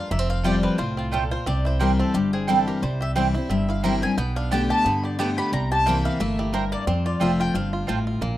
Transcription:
Already playing: five-string banjo D4 F4, mandolin F5
0.11 upright bass F1, steel-string acoustic guitar F2, five-string banjo A#3, mandolin E5
0.19 five-string banjo C4
0.30 mandolin F5
0.44 steel-string acoustic guitar F3 G3 C4 G4, mandolin A3 F4 C5 D5 G5, five-string banjo F4
0.63 five-string banjo C4, mandolin B4
0.78 upright bass C2, steel-string acoustic guitar A2, five-string banjo F4, mandolin C5
0.97 five-string banjo C4, mandolin F4
1.12 steel-string acoustic guitar A#2, mandolin A3 F4 A4 C5 G5, five-string banjo F4
1.31 five-string banjo F4, mandolin C5
1.46 upright bass C2, steel-string acoustic guitar C3, five-string banjo C4, mandolin D5
1.65 five-string banjo E4, mandolin C5
1.79 steel-string acoustic guitar E3 G3 C4 E4, mandolin C4 E4 A#4 C5 G5, five-string banjo G4
2.00 five-string banjo C4, mandolin A4
2.14 upright bass G1, steel-string acoustic guitar G2, mandolin G4, five-string banjo G4
2.33 five-string banjo C4, mandolin G#4
2.47 steel-string acoustic guitar E3 G3 C4 E4, mandolin C4 E4 A4 C5 G5, five-string banjo E4
2.67 five-string banjo G4, mandolin A#4
2.82 upright bass C2, steel-string acoustic guitar C3, five-string banjo G3, mandolin C5
3.01 five-string banjo G4, mandolin E5
3.15 steel-string acoustic guitar E3 G3 C4 E4, mandolin C4 E4 C5 G5, five-string banjo C4
3.34 steel-string acoustic guitar C4 E4, five-string banjo E4
3.49 upright bass G1, steel-string acoustic guitar G2, five-string banjo C4, mandolin E5
3.69 five-string banjo E4, mandolin F5
3.83 steel-string acoustic guitar E3 G3 C4 E4, mandolin C4 E4 C5 G5, five-string banjo A#4
4.02 five-string banjo C4, steel-string acoustic guitar C4 E4, mandolin G#5
4.17 upright bass B1, steel-string acoustic guitar B2, five-string banjo B3, mandolin G5
4.36 five-string banjo D4, mandolin F5
4.51 steel-string acoustic guitar D3 A3 B3 G4, mandolin B3 G4 D5 G5 A5, five-string banjo G4
4.70 five-string banjo G4, mandolin A5
4.85 upright bass G2, steel-string acoustic guitar D3, five-string banjo B3, mandolin B5
5.04 five-string banjo G4, mandolin D5
5.19 steel-string acoustic guitar D3 A3 B3 G4, mandolin B3 G4 D5 G5 A5, five-string banjo G4
5.38 five-string banjo G4, mandolin B5
5.52 upright bass C2, steel-string acoustic guitar C3, five-string banjo G3, mandolin A#5
5.71 five-string banjo G4, mandolin A5
5.86 steel-string acoustic guitar E3 A#3 C4 E4, mandolin A#3 E4 C5 G5, five-string banjo A#3
6.05 five-string banjo E4, mandolin F5
6.20 upright bass G1, steel-string acoustic guitar A3, five-string banjo A#3, mandolin E5
6.39 five-string banjo E4, mandolin G4
6.53 steel-string acoustic guitar G2, mandolin A#3 E4 A#4 C5 G5, five-string banjo A#4
6.72 five-string banjo A#3, mandolin D5
6.87 upright bass F2, steel-string acoustic guitar F2, five-string banjo C4, mandolin C5
7.06 five-string banjo F4, mandolin D5
7.20 upright bass F1, steel-string acoustic guitar F3 A3 C4 F4, mandolin C4 F4 C5 E5 A5, five-string banjo F4
7.40 five-string banjo F4, mandolin G5
7.54 upright bass G1, steel-string acoustic guitar G2, five-string banjo C4, mandolin F5
7.73 five-string banjo F4
7.87 upright bass A1, steel-string acoustic guitar A2, mandolin C4 F4 C5 A5, five-string banjo F4
8.07 five-string banjo F4
8.21 upright bass A#1, steel-string acoustic guitar A#2, five-string banjo A#3

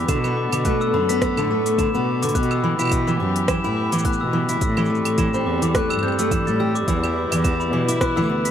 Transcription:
Already playing: string quartet B3
0.08 cello B2, steel-string acoustic guitar D3, string quartet D3 A4, glockenspiel E7, kick, open hi-hat, shaker
0.24 steel-string acoustic guitar B3, glockenspiel B5, claves, shaker
0.37 glockenspiel D6
0.53 cello B2, steel-string acoustic guitar D3, glockenspiel D6, open hi-hat, claves, shaker
0.65 steel-string acoustic guitar A3, glockenspiel F#6, kick, open hi-hat, shaker
0.81 glockenspiel E6, shaker
0.94 cello F#2, steel-string acoustic guitar D3, glockenspiel B5
1.09 steel-string acoustic guitar B3, glockenspiel B6, open hi-hat, shaker
1.21 glockenspiel E6, kick, cross-stick, open hi-hat, shaker
1.37 cello A2, steel-string acoustic guitar D3, glockenspiel E6, claves, shaker
1.50 steel-string acoustic guitar A3, glockenspiel D6
1.66 glockenspiel D6, open hi-hat, shaker
1.78 steel-string acoustic guitar D3, glockenspiel E7, kick, open hi-hat, shaker
1.94 cello B2, steel-string acoustic guitar B3, glockenspiel B5, shaker
2.07 glockenspiel D6
2.22 steel-string acoustic guitar D3, glockenspiel D6, open hi-hat, shaker
2.29 open hi-hat
2.35 cello B2, string quartet E3 G4, steel-string acoustic guitar B3, glockenspiel F#6, kick, open hi-hat, shaker
2.43 open hi-hat
2.51 glockenspiel E6, claves, shaker
2.63 steel-string acoustic guitar E3, glockenspiel B5
2.79 cello B2, steel-string acoustic guitar E4, glockenspiel B6, claves, shaker
2.81 claves
2.85 claves
2.87 claves
2.90 glockenspiel E6, kick, open hi-hat, claves, shaker
3.07 steel-string acoustic guitar E3, glockenspiel E6, shaker
3.20 cello F#2, steel-string acoustic guitar B3, glockenspiel D6
3.36 glockenspiel D6, open hi-hat
3.48 steel-string acoustic guitar E3, glockenspiel E7, kick, cross-stick, open hi-hat, shaker
3.64 cello A2, steel-string acoustic guitar E4, glockenspiel B5, shaker
3.77 glockenspiel D6
3.92 steel-string acoustic guitar E3, glockenspiel D6, open hi-hat, shaker
3.99 shaker
4.05 steel-string acoustic guitar B3, glockenspiel F#6, kick, open hi-hat
4.13 shaker
4.21 cello B2, glockenspiel E6
4.33 steel-string acoustic guitar E3, glockenspiel B5
4.49 steel-string acoustic guitar E4, glockenspiel B6, open hi-hat, shaker
4.61 cello A2, string quartet G3 C4 A4, glockenspiel E6, kick, open hi-hat, shaker
4.77 steel-string acoustic guitar E3, glockenspiel E6, claves, shaker
4.85 shaker
4.90 steel-string acoustic guitar A3, glockenspiel D6
4.95 shaker
5.05 cello A2, glockenspiel D6, open hi-hat, claves
5.18 steel-string acoustic guitar E3, glockenspiel E7, kick, open hi-hat, shaker
5.34 steel-string acoustic guitar C4, glockenspiel B5, shaker
5.46 cello E2, glockenspiel D6
5.62 steel-string acoustic guitar E3, glockenspiel D6, open hi-hat, shaker
5.75 steel-string acoustic guitar A3, glockenspiel F#6, kick, cross-stick, open hi-hat, shaker
5.90 cello G2, glockenspiel E6, claves, shaker
5.93 claves
5.99 glockenspiel G6, claves
6.03 steel-string acoustic guitar C4, claves
6.08 claves
6.12 claves
6.19 steel-string acoustic guitar A3, glockenspiel E6, open hi-hat, shaker
6.31 steel-string acoustic guitar E3, glockenspiel E7, kick, open hi-hat, shaker
6.47 cello A2, steel-string acoustic guitar G3, glockenspiel A6, shaker
6.60 steel-string acoustic guitar G4, glockenspiel E6
6.75 glockenspiel D6, shaker
6.88 cello E2, steel-string acoustic guitar E3, string quartet E4 B4, glockenspiel E6, kick, open hi-hat, shaker
7.04 steel-string acoustic guitar E4, glockenspiel E6, claves, shaker
7.16 glockenspiel D6
7.32 cello E2, steel-string acoustic guitar E3, glockenspiel D6, open hi-hat, claves, shaker
7.44 steel-string acoustic guitar B3, glockenspiel E7, kick, open hi-hat, shaker
7.60 glockenspiel B5, shaker
7.73 cello B2, steel-string acoustic guitar E3, glockenspiel D6
7.88 steel-string acoustic guitar E4, glockenspiel D6, open hi-hat, shaker
8.01 glockenspiel F#6, kick, cross-stick, open hi-hat, shaker
8.16 cello D2, steel-string acoustic guitar E3, glockenspiel E6, shaker
8.29 steel-string acoustic guitar B3, glockenspiel B5
8.45 glockenspiel B6, open hi-hat, shaker

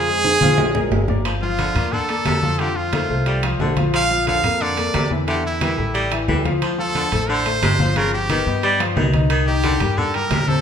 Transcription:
Already playing: upright bass F2, trumpet G#4
0.08 grand piano G#3 G#4 C5, high conga
0.24 high conga, high timbale
0.41 upright bass A#1, grand piano F3 F4 F5, high conga, high timbale
0.58 high conga, low timbale
0.75 grand piano G#3 G#4 A#4, low conga, low timbale
0.91 upright bass G1, low timbale
1.08 grand piano A#3 A#4 D5, low conga, low timbale
1.25 baritone saxophone F3, high conga, high timbale
1.42 grand piano F3 F4 F5, trumpet F4, high conga
1.58 baritone saxophone D3, high conga, high timbale, low timbale
1.75 upright bass D2, grand piano A#3 A#4 D5, high conga, low conga, high timbale
1.92 baritone saxophone D3, trumpet A4, high conga, low conga
2.09 grand piano A#3 A4 D5, high conga, high timbale
2.25 upright bass F2, baritone saxophone C3, high conga, high timbale, low timbale
2.43 grand piano F3 F4 F5, high conga
2.59 baritone saxophone D3, grand piano F3 F4 F5, trumpet G4, high timbale
2.76 trumpet F4, high conga
2.93 baritone saxophone D#3, grand piano A3 A4 C5, high conga, high timbale, low timbale
3.09 upright bass C2, grand piano A3 A4 C5, high conga
3.26 baritone saxophone G3, high conga, high timbale
3.43 grand piano F3 F4 F5, high conga, high timbale
3.59 upright bass A#1, baritone saxophone D3, grand piano A3 A4 C5, high conga, low timbale
3.76 grand piano F3 F4 F5, high conga, high timbale
3.93 baritone saxophone F3, trumpet F5, high conga, high timbale
4.10 grand piano F3 F4 F5, high conga
4.27 baritone saxophone D3, trumpet F5, high conga, high timbale, low timbale
4.43 upright bass F2, grand piano A#3 A4 A#4, high conga, low conga, high timbale
4.61 baritone saxophone D3, trumpet D5, high conga
4.77 grand piano A#3 A4 A#4, high conga, high timbale
4.94 upright bass E2, baritone saxophone C3, high conga, high timbale, low timbale
5.10 grand piano E3 E4 E5, high conga
5.27 baritone saxophone D3, grand piano E3 E4 E5, trumpet G4, high conga, high timbale
5.45 trumpet E4, high conga
5.61 baritone saxophone E3, grand piano G3 G4 A#4, high conga, high timbale, low timbale
5.78 upright bass A1, grand piano G3 G4 A4, high conga
5.95 baritone saxophone G3, high conga, high timbale
6.11 grand piano E3 E4 E5, high conga, high timbale
6.28 upright bass D2, baritone saxophone E3, grand piano G3 G4 A4, high conga, low timbale
6.45 grand piano F3 F4 F5, high conga, high timbale
6.62 baritone saxophone F3, high conga, high timbale
6.78 grand piano F3 F4 F5, trumpet A4, high conga
6.95 baritone saxophone D3, high conga, high timbale, low timbale
7.12 upright bass A1, grand piano A3 A4 C5, high conga, low conga, high timbale
7.29 baritone saxophone D3, trumpet C5, high conga
7.46 grand piano A3 A4 C5, high conga, high timbale
7.62 upright bass G1, baritone saxophone C3, high conga, high timbale, low timbale
7.79 grand piano F3 F4 F5, high conga
7.96 baritone saxophone C#3, grand piano F3 F4 F5, trumpet A#4, high timbale
8.13 trumpet G4, high conga
8.30 baritone saxophone D#3, grand piano B3 B4 D#5, high conga, high timbale, low timbale
8.46 upright bass G2, grand piano B3 B4 D#5, high conga
8.63 baritone saxophone G3, high conga, high timbale
8.80 grand piano F3 F4 F5, high conga, high timbale
8.96 upright bass C2, baritone saxophone D#3, grand piano B3 B4 D#5, high conga, low timbale
9.13 grand piano D#3 D#4 D#5, high conga, high timbale
9.30 baritone saxophone D#3, high timbale
9.47 grand piano D#3 D#4 D#5, trumpet G4, high conga
9.63 baritone saxophone D3, high conga, high timbale, low timbale
9.80 upright bass G2, grand piano G3 G4 A#4, high conga, low conga, high timbale
9.97 baritone saxophone D3, trumpet A4, high conga, low conga
10.14 grand piano G3 G4 A#4, trumpet A#4, high conga, high timbale
10.30 upright bass A2, baritone saxophone C3, high conga, high timbale, low timbale
10.48 grand piano C3 C4 C5, trumpet A4, high conga

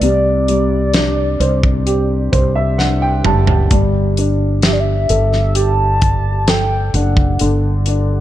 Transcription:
0.01 fretless electric bass C2, upright piano C3, soft synth lead D5, closed hi-hat
0.48 upright piano G3, closed hi-hat
0.94 upright piano D4, snare, closed hi-hat
1.40 fretless electric bass C2, upright piano C5, closed hi-hat
1.63 kick
1.86 upright piano G4, closed hi-hat
2.32 fretless electric bass C2, upright piano C5, kick, closed hi-hat
2.55 upright piano E5
2.78 upright piano D4 F#5, snare
3.02 upright piano G5
3.24 fretless electric bass F#1, upright piano G3 A5, mid tom
3.47 floor tom
3.71 fretless electric bass G1, upright piano G3, kick, closed hi-hat
4.17 upright piano D4, closed hi-hat
4.62 upright piano G4, soft synth lead E5, snare, closed hi-hat
4.73 soft synth lead D5
4.80 soft synth lead E5
5.09 fretless electric bass G1, upright piano A4, closed hi-hat
5.33 snare
5.55 upright piano G4, soft synth lead A5, closed hi-hat
6.02 kick, closed hi-hat
6.48 upright piano A4, soft synth lead G5, snare, closed hi-hat
6.94 fretless electric bass F#1, upright piano D4, soft synth lead F#5, closed hi-hat
7.17 kick
7.39 fretless electric bass G1, upright piano D3, closed hi-hat
7.86 upright piano D4, closed hi-hat

